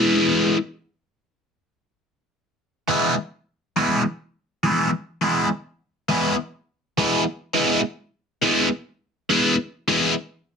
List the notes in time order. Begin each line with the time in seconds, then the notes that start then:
Already playing: E3 G#3 B3 E4
2.88 E3 G#3 B3 E4
3.76 E3 G#3 B3 E4
4.63 E3 G#3 B3 E4
5.21 E3 G#3 B3 E4
6.09 E3 G#3 B3 E4
6.98 E3 G#3 B3 E4
7.54 E3 G#3 B3 E4
8.42 E3 G#3 B3 E4
9.30 E3 G#3 B3 E4
9.88 E3 G#3 B3 E4